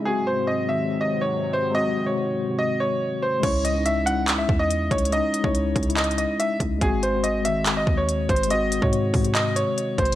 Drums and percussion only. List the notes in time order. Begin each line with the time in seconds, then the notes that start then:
3.43 kick, closed hi-hat, crash
3.65 closed hi-hat
3.86 closed hi-hat
4.07 closed hi-hat
4.28 clap, closed hi-hat
4.49 kick
4.71 closed hi-hat
4.91 kick, closed hi-hat
4.98 closed hi-hat
5.05 closed hi-hat
5.12 closed hi-hat
5.34 closed hi-hat
5.44 kick
5.55 closed hi-hat
5.76 kick, closed hi-hat
5.83 closed hi-hat
5.90 closed hi-hat
5.97 clap, closed hi-hat
6.04 closed hi-hat
6.11 closed hi-hat
6.18 closed hi-hat
6.40 closed hi-hat
6.60 kick, closed hi-hat
6.81 kick, closed hi-hat
7.03 closed hi-hat
7.24 closed hi-hat
7.45 closed hi-hat
7.66 clap, closed hi-hat
7.87 kick
8.09 closed hi-hat
8.29 kick, closed hi-hat
8.36 closed hi-hat
8.43 closed hi-hat
8.50 closed hi-hat
8.72 closed hi-hat
8.82 kick
8.93 closed hi-hat
9.14 kick, closed hi-hat, open hi-hat
9.25 closed hi-hat
9.35 clap, closed hi-hat
9.56 closed hi-hat
9.78 closed hi-hat
9.98 kick, closed hi-hat
10.05 closed hi-hat